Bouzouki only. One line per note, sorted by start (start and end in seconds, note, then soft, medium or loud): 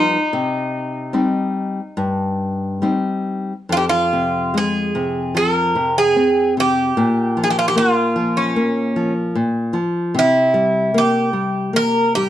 0.00 3.24 D#4 medium
3.72 3.77 F4 medium
3.77 3.84 G4 medium
3.89 4.57 F4 medium
4.58 5.36 G#4 medium
5.37 5.98 A#4 medium
5.98 6.53 G#4 medium
6.60 7.38 G4 medium
7.44 7.50 G#4 medium
7.50 7.58 G4 medium
7.59 7.67 F4 medium
7.68 7.76 G4 medium
7.78 8.39 F4 medium
8.37 9.13 C#4 medium
10.19 10.99 E4 medium
10.98 11.76 G4 medium
11.76 12.15 A#4 loud
12.15 12.29 G4 medium